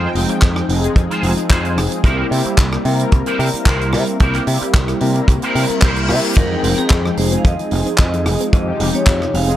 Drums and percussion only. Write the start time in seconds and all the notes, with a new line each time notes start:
0.15 open hi-hat
0.29 closed hi-hat
0.42 kick, clap, closed hi-hat
0.56 cross-stick
0.69 open hi-hat
0.84 closed hi-hat
0.96 kick, closed hi-hat
1.11 closed hi-hat
1.23 open hi-hat
1.37 closed hi-hat
1.50 kick, clap, closed hi-hat
1.65 closed hi-hat
1.77 cross-stick, open hi-hat
1.92 closed hi-hat
2.04 kick, closed hi-hat
2.32 open hi-hat
2.45 closed hi-hat
2.58 kick, clap, closed hi-hat
2.73 cross-stick
2.85 open hi-hat
2.99 closed hi-hat
3.12 kick, closed hi-hat
3.26 closed hi-hat
3.39 open hi-hat
3.55 closed hi-hat
3.66 kick, clap, closed hi-hat
3.81 closed hi-hat
3.93 cross-stick, open hi-hat
4.07 closed hi-hat
4.20 kick, closed hi-hat
4.34 clap, closed hi-hat
4.47 open hi-hat
4.62 closed hi-hat
4.74 kick, clap, closed hi-hat
4.88 cross-stick, closed hi-hat
5.00 open hi-hat
5.15 closed hi-hat
5.28 kick, closed hi-hat
5.42 closed hi-hat
5.55 open hi-hat
5.69 closed hi-hat
5.82 kick, clap, closed hi-hat
5.96 closed hi-hat
6.09 cross-stick, open hi-hat
6.24 closed hi-hat
6.36 kick, closed hi-hat, crash
6.64 open hi-hat
6.78 closed hi-hat
6.90 kick, clap, closed hi-hat
7.06 cross-stick
7.17 open hi-hat
7.32 closed hi-hat
7.45 kick, closed hi-hat
7.59 closed hi-hat
7.71 open hi-hat
7.86 closed hi-hat
7.98 kick, clap, closed hi-hat
8.13 closed hi-hat
8.26 cross-stick, open hi-hat
8.40 closed hi-hat
8.53 kick, closed hi-hat
8.80 open hi-hat
8.95 closed hi-hat
9.07 kick, clap, closed hi-hat
9.22 cross-stick
9.34 open hi-hat
9.49 closed hi-hat